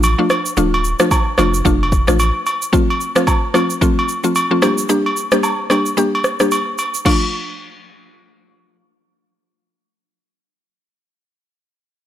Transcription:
Already playing: A1
0.03 high agogo, shaker
0.18 F3 A3 D4 F4
0.30 cross-stick, high agogo, shaker
0.46 shaker
0.57 D1 F3 A3 D4 F4, shaker
0.74 high agogo
0.84 shaker
1.00 F3 A3 D4 F4, cross-stick, shaker
1.11 kick, high agogo, low woodblock, shaker
1.38 F1 F3 A3 D4 F4, cross-stick, high agogo, shaker
1.54 shaker
1.65 F1 F3 A3 D4 F4, kick, shaker
1.83 high agogo
1.92 kick, shaker
2.07 A1 F3 A3 D4 F4, cross-stick, shaker
2.19 high agogo, shaker
2.46 high agogo, shaker
2.62 shaker
2.73 F3 A3 C4 F4, kick, shaker
2.90 high agogo
3.01 shaker
3.15 F3 A3 C4 F4, cross-stick, shaker
3.27 kick, high agogo, low woodblock, shaker
3.54 F3 A3 C4 F4, cross-stick, high agogo, shaker
3.70 shaker
3.81 F3 A3 C4 F4, kick, shaker
3.99 high agogo
4.09 shaker
4.24 F3 A3 C4 F4, shaker
4.35 high agogo, shaker
4.51 F3 A3 C4 F4
4.62 G3 A#3 D4 G4, cross-stick, high agogo, shaker
4.78 shaker
4.89 G3 A#3 D4 G4, shaker
5.06 high agogo
5.17 shaker
5.32 G3 A#3 D4 G4, cross-stick, shaker
5.43 high agogo, low woodblock, shaker
5.70 G3 A#3 D4 G4, cross-stick, high agogo, shaker
5.86 shaker
5.97 G3 A#3 D4 G4, shaker
6.15 high agogo
6.24 cross-stick, shaker
6.40 G3 A#3 D4 G4, cross-stick, shaker
6.51 high agogo, shaker
6.78 high agogo, shaker
6.94 shaker
7.05 F3 A3 D4 F4, kick, crash, high agogo

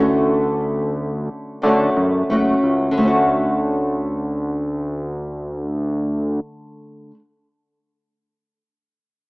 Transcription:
Already playing: D2 C#4 F#4
0.00 D3 A3
1.62 D3 A3 C#4 F#4
1.97 F#2
2.30 F#1 A3 C#4 F#4
2.63 C#2
2.91 D3
2.98 D2 A3
3.03 C#4
3.07 F#4

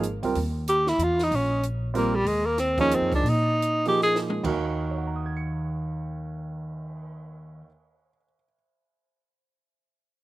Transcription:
Already playing: G#1
0.03 closed hi-hat
0.23 C#2 G3 C4 F4 A#4, open hi-hat
0.35 D#2, open hi-hat
0.67 G4, closed hi-hat
0.87 E4, snare
0.98 E2, closed hi-hat
1.03 F4
1.19 snare, open hi-hat
1.23 D#4
1.31 A#1, open hi-hat
1.36 C#4
1.63 closed hi-hat
1.94 G3 A#3 C4 F4 A#4, open hi-hat
2.15 G3
2.25 D#2 G#3, open hi-hat
2.45 A#3
2.58 C4, snare, closed hi-hat
2.78 F3 A#3 C#4 D#4 G#4, kick, open hi-hat
2.91 closed hi-hat
2.96 C4
3.01 F2
3.12 C#2 D4, kick, open hi-hat
3.23 A#2, open hi-hat
3.30 D#4
3.62 closed hi-hat
3.85 F3 A#3 D#4 G4 G#4, open hi-hat
4.01 G#4, snare
4.15 snare
4.30 mid tom
4.43 D#2 D#3 A#3 F#4 A#4, kick, crash
4.72 cymbal swell
4.91 C#5
4.98 F#5
5.07 A#5
5.16 D#6
5.26 G#6
5.37 C#7

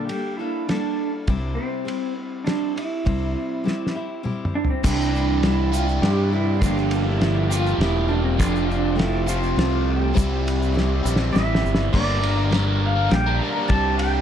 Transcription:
0.05 G3 G4, ride
0.10 A#3 D4 A4
0.37 A#3 D4 E4 A4
0.41 G3
0.67 G3 A#3 D4 A4, snare, ride
1.27 C2 C3 G3 C4 E4 G4, kick, ride
1.55 C4
1.85 G3 C4 E4 G4, ride
2.44 G3 C4 D4 E4 G4, snare, ride
2.76 C4 E4 G4, ride
3.05 C2 C3 G3 C4 E4 G4, kick, ride
3.64 G3 C4 E4 G4, snare
3.87 snare
3.95 C4 E4 G4
4.23 G3 C4 E4 G4, mid tom
4.45 mid tom
4.55 D4
4.65 floor tom
4.70 C4
4.83 C2 C3 E3 G3 D4 E4 G4 D5 C6, kick, crash, shaker
5.02 shaker
5.13 D4, shaker
5.43 G3 D4 E4 G4, snare, ride
5.72 C3 E3 G3 E4 F4 G4, shaker
5.89 shaker
6.02 G2 G3 D4 E4 G4, snare, ride
6.32 D4 E4 G4
6.61 G1 G2 D3 F3 G3 A#3 D4 F4 G4 G5 A#5, kick, ride, shaker
6.65 G4
6.78 shaker
6.91 ride, shaker
7.09 E4
7.21 F3 A#3 F4 G4, snare, ride
7.50 G2 D3 G3 A#3 D4 F4 G4, shaker
7.67 shaker
7.78 E1 F3 A#3 E4, snare, ride
7.83 F4 G4
8.08 F3 A#3 D4 F4 G4
8.23 C4
8.38 F1 F2 C3 F3 A3 C4 D4 F4 G4, kick, ride, shaker
8.42 A5
8.56 shaker
8.70 D4, shaker
8.95 A3 C4 E4 F4 G4, ride
9.00 snare
9.26 F2 C3 F3 A3 C4 F4 G4, shaker
9.43 shaker
9.57 C2 A3 C4 F4 G4, snare, ride
9.89 G4
10.13 C2 C3 E3 G3 C4 E4 G4, kick, shaker
10.17 E4 E5 C6, ride
10.47 ride, shaker
10.63 shaker
10.72 G3 C4 E4 G4
10.77 snare
11.03 A#1 C3 E3 G3 C4 E4, shaker
11.16 snare
11.32 A1 G3 C4 E4 G4 E5, shaker
11.36 snare
11.55 snare
11.65 G1, shaker
11.75 snare
11.92 G1 G2 D3 G3 A#3 D4 G4 A#4 D5, kick, crash
12.21 G3 A#3 D4 A#4, ride
12.50 G2 D3 G3 A#3 D4 G4, snare, ride
12.54 D4 A#4
12.66 G3 A#3 D4 A#4
12.86 F5
12.95 G3 A#3 D4 A#4
13.08 A#1 G3 A#3 D4 G4 G5, muted overdriven electric guitar stroke, snare, ride
13.26 G3 A#3 D4 A#4
13.39 G3 A#3 A#5
13.44 D4 A#4
13.56 G3 A#3 D4 A#4
13.68 C2 C3 G3 C4 D4 G4 D5 A5, kick, ride
13.72 G3 C4 D4 G4
13.98 G3 G5, ride
14.02 C4 D4 G4

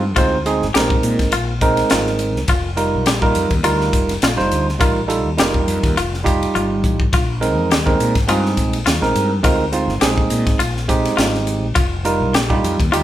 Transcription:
Already playing: G2
0.16 D2 G#3 C4 D#4 F4 C5, kick, hi-hat pedal, ride
0.46 G#3 C4 D#4 G#4, hi-hat pedal, ride
0.62 G#1, snare
0.74 A#1 G#3 C4 D#4 G4 A#4, snare, hi-hat pedal, ride
0.90 kick
1.03 A#2, hi-hat pedal, ride
1.19 G#1, kick, snare, ride
1.32 A#1 F4, hi-hat pedal, ride
1.61 G#3 C4 D#4 A#4, kick, hi-hat pedal, ride
1.77 snare, ride
1.90 G#1 F4, snare, hi-hat pedal, ride
2.07 snare
2.19 hi-hat pedal, ride
2.36 C2, snare
2.48 F1 F4, kick, hi-hat pedal, ride
2.77 G3 D#4 F4 A#4, hi-hat pedal, ride
2.95 C2
3.06 A#1 G4, snare, hi-hat pedal, ride
3.22 G3 D#4 F4 A#4, kick
3.35 F2, hi-hat pedal, ride
3.50 D#2, kick, ride
3.63 D2 G3 D#4 F4 A#4, hi-hat pedal, ride
3.81 snare
3.93 F1, kick, hi-hat pedal, ride
4.09 snare, ride
4.22 A#1 F4, snare, hi-hat pedal, ride
4.37 F1 G3 D#4 F4 C5, snare
4.51 D2, hi-hat pedal, ride
4.69 snare
4.79 A1 G3 D#4 F4 A#4, kick, hi-hat pedal, ride
5.08 G3 D#4 F4 A4, hi-hat pedal, ride
5.26 D#2
5.38 F1 G3 D#4 F4 G4 A#4, snare, hi-hat pedal, ride
5.54 kick
5.67 F2, hi-hat pedal, ride
5.83 D#2, kick, snare, ride
5.97 F1 F4, hi-hat pedal, ride
6.14 snare
6.24 G3 D#4 F4 G4, kick, hi-hat pedal, ride
6.43 ride
6.55 G1 F4, hi-hat pedal, high tom
6.84 A1, kick, hi-hat pedal
7.00 kick
7.13 A#1 F4, kick, hi-hat pedal, ride
7.41 G#3 C4 D#4 A#4, hi-hat pedal, ride
7.58 F2
7.71 D#2 G4, snare, hi-hat pedal, ride
7.86 G#3 C4 D#4 A#4, kick
8.00 A#2, hi-hat pedal, ride
8.15 G#1, kick, snare, ride
8.28 G2 G#3 C4 D#4 F4 G#4, hi-hat pedal, ride
8.46 snare
8.57 A#1, kick, hi-hat pedal, ride
8.73 ride
8.86 D#2 F4, snare, hi-hat pedal, ride
9.01 A#1 G#3 C4 D#4 A#4, snare
9.15 G2, hi-hat pedal, ride
9.43 D2 G#3 C4 D#4 F4 A#4, kick, hi-hat pedal, ride
9.72 G#3 C4 D#4 F4, hi-hat pedal, ride
9.88 G#1, snare
10.01 A#1 G#3 C4 D#4 G4 G#4, snare, hi-hat pedal, ride
10.18 kick
10.30 A#2, hi-hat pedal, ride
10.47 G#1, kick, snare, ride
10.59 A#1 F4, hi-hat pedal, ride
10.77 snare
10.88 G#3 C4 D#4 G4, kick, hi-hat pedal, ride
11.05 snare, ride
11.17 G#1 F4, snare, hi-hat pedal, ride
11.35 snare
11.47 hi-hat pedal, ride
11.63 A#1
11.75 F1 F4, kick, hi-hat pedal, ride
12.05 G3 D#4 F4 A#4, hi-hat pedal, ride
12.20 C2
12.34 A#1 G4, snare, hi-hat pedal, ride
12.49 G3 D#4 F4 G4, kick
12.64 F2, hi-hat pedal, ride
12.80 D#2, kick, ride
12.92 D2 G3 D#4 F4 G4, hi-hat pedal, ride

